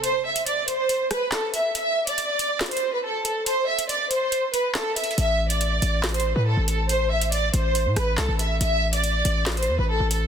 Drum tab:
HH |x-----------------x-----x-----------x-----------x-----------x-----------------------x-----------|x-----------------x-----x-----------x-----------x--x--x--x--------------------------x-----------|x-----------------x-----x-----------x-----------x-----------x-----------------------x---x---x---|x-----------------x-----x-----------x-----------x--x--x--x--------------------------x-----------|
CP |------------------------------------------------------------------------x-----------------------|------------------------------------------------x-----------------------------------------------|------------------------------------------------------------------------x-----------------------|------------------------------------------------x-----------------------------------------------|
SD |------------------------------------------------------------r-----------o-----------------------|------------------------------------------------o-----------------------------------------------|------------------------------------------------------------------------o-----------------------|------------------------------------------------o-----------------------------------------------|

HH |x-----------------x-----x-----------x-----------x-----------x-----------------------x-----------|x-----------------x-----x-----------x-----------x--x--x--x--------------------------x-----------|
CP |------------------------------------------------------------------------x-----------------------|------------------------------------------------x-----------------------------------------------|
SD |------------------------------------------------------------r-----------o-----------------------|------------------------------------------------o-----------------------------------------------|